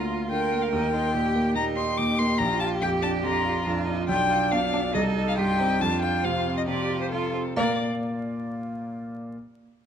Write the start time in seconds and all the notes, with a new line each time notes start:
Already playing: D2 D3 A#3 F4
0.11 F4
0.30 D3 A#4 G5
0.52 A#3
0.62 F5
0.72 D#2 D#4 G5
0.93 D#4 F4
1.14 A#2 G4
1.35 A#3
1.55 A#2 D#4 G4 A#5
1.76 D#4 C6
1.97 A#2 D6
2.18 A#3 C6
2.38 A#1 F4 A#5
2.60 F4 A5
2.81 F2 G4 G5
3.02 D4 A5
3.24 F2 F4 A#5
3.45 F4
3.65 F2 D4 F4
3.86 D4 D#4
4.08 B1 D4 F4 G5
4.29 F4
4.51 B2 D4 F5
4.73 D4
4.94 C2 D#4 A4 D#5
5.17 D#4
5.28 F5
5.37 G2 F4 G4 G5
5.58 C4 D#4
5.80 F2 D4 F4 A5
6.02 F4 G5
6.23 C3 C4 F5
6.46 C4
6.57 D#5
6.67 C3 F4 G4 D5
6.90 F4
7.01 C5
7.11 C3 F4 A4
7.34 C4
7.56 A#2 A#3 F4 A#4 D5 F5